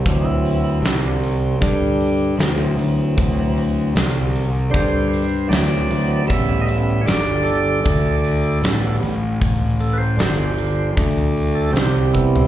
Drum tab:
HH |o-o-o-o-o-o-o-o-|o-o-o-o-o-o-o-o-|o-o-o-o-o-o-o-o-|o-o-o-o-o-o-o---|
SD |----o-------o---|----o-------o---|----o-------o---|----o-------o---|
FT |----------------|----------------|----------------|---------------o|
BD |o-------o-------|o-------o-------|o-------o-------|o-------o-----o-|